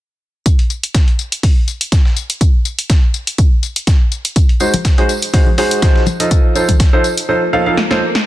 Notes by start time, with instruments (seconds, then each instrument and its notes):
0.46 kick, closed hi-hat, tambourine
0.59 closed hi-hat
0.70 tambourine
0.83 closed hi-hat
0.94 kick, snare, closed hi-hat, tambourine
1.08 closed hi-hat
1.19 tambourine
1.32 closed hi-hat
1.43 kick, closed hi-hat, open hi-hat
1.68 tambourine
1.81 closed hi-hat
1.92 kick, snare, closed hi-hat, tambourine
2.05 snare
2.16 tambourine
2.30 closed hi-hat
2.41 kick, closed hi-hat, tambourine
2.65 tambourine
2.79 closed hi-hat
2.90 kick, snare, closed hi-hat, tambourine
3.14 tambourine
3.27 closed hi-hat
3.38 kick, closed hi-hat, tambourine
3.63 tambourine
3.76 closed hi-hat
3.87 kick, snare, closed hi-hat, tambourine
4.12 tambourine
4.25 closed hi-hat
4.36 kick, closed hi-hat, tambourine
4.49 closed hi-hat
4.60 grand piano G#3 D#4 F#4 G#4 C5, tambourine
4.74 closed hi-hat, tambourine, high conga
4.84 kick, snare, closed hi-hat, tambourine
4.98 grand piano G#3 D#4 F#4 G#4 C5, closed hi-hat
5.09 tambourine
5.22 closed hi-hat, tambourine
5.33 grand piano G#3 D#4 F#4 G#4 C5, kick, closed hi-hat, open hi-hat
5.47 high conga
5.58 grand piano G#3 D#4 F#4 G#4 C5, open hi-hat, tambourine
5.71 closed hi-hat, tambourine
5.82 grand piano F3 D#4 F#4 G#4 C5, kick, snare, closed hi-hat, tambourine
5.96 snare
6.06 tambourine, high conga
6.20 grand piano F3 D#4 F4 A4 D#5, closed hi-hat, tambourine
6.31 kick, closed hi-hat, tambourine
6.55 grand piano F3 D#4 F4 A4 C5, tambourine
6.68 kick, closed hi-hat, tambourine, high conga
6.80 kick, snare, closed hi-hat, tambourine
6.93 grand piano F3 D#4 F4 A4 C5
7.04 tambourine
7.18 closed hi-hat, tambourine
7.29 grand piano F3 D#4 F4 A4 C5, swell
7.53 grand piano F3 D#4 F4 A4 F5
7.66 grand piano F3 D#4 F4 A4 F5
7.77 snare
7.91 grand piano F3 D#4 F4 A4 C5, snare
8.15 snare